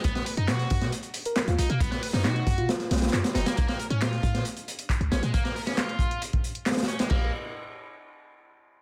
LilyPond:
<<
  \new Staff \with { instrumentName = "FM electric piano" } { \time 4/4 \key bes \phrygian \tempo 4 = 136 r2 r8. ais'8 f'16 f'16 r16 | r4 dis'16 dis'16 r16 f'4. r8. | r1 | r1 |
r1 | }
  \new Staff \with { instrumentName = "Distorted electric guitar" } { \time 4/4 \key bes \phrygian b16 b16 b'16 dis'16 fis'4 r4. dis'16 ais16 | b16 b16 b'16 dis'16 fis'4 r4. dis'16 ais16 | bes16 bes16 bes'16 des'16 f'4 r4. des'16 aes16 | bes16 bes16 bes'16 des'16 f'4 r4. des'16 aes16 |
bes8 r2. r8 | }
  \new Staff \with { instrumentName = "808-style bass" } { \clef bass \time 4/4 \key bes \phrygian b,,16 r8 fis,16 b,8 fis,16 b,16 r4 r16 dis,16 b,,16 b,16 | b,,16 r8 fis,16 b,8 fis,16 b,16 r8 b,,8 fis,16 r16 fis,,16 r16 | bes,,16 r8 aes,16 bes,8 aes,16 bes,16 r4 r16 des,16 bes,,16 bes,16 | r1 |
bes,,8 r2. r8 | }
  \new DrumStaff \with { instrumentName = "Drums" } \drummode { \time 4/4 <hh bd>16 <hh sn>16 <hh hho>16 hh16 <hc hh sn>16 <hh sn>16 <hh hho bd>16 <hh sn>16 hh16 hh16 <hh hho>16 hh16 <hc hh sn>16 hh16 <hh hho>16 hh16 | <hh bd>16 <hh sn>16 hho16 <hh sn>16 <hc hh sn>16 hh16 <hh hho bd>16 hh16 <hh sn>16 <hh sn>16 <hh hho sn>32 <hh sn>32 <hh sn>32 <hh sn>32 <hc hh sn>16 <hh sn>16 <hh hho sn>16 <hh sn>16 | <hh bd>16 <hh sn>16 hh16 hh16 <hc hh sn>16 <hh sn>16 <hh bd>16 <hh sn>16 hh16 hh16 hh16 hh16 <hc hh bd>16 hh16 <hh sn>16 hh16 | <hh bd>16 <hh sn>16 hho16 <hh sn>16 <hc hh sn>16 hh16 <hh bd>16 hh16 hh16 <hh bd>16 hh16 hh16 <hc hh sn>32 <hh sn>32 <hh sn>32 <hh sn>32 hh16 <hh sn>16 |
<cymc bd>4 r4 r4 r4 | }
>>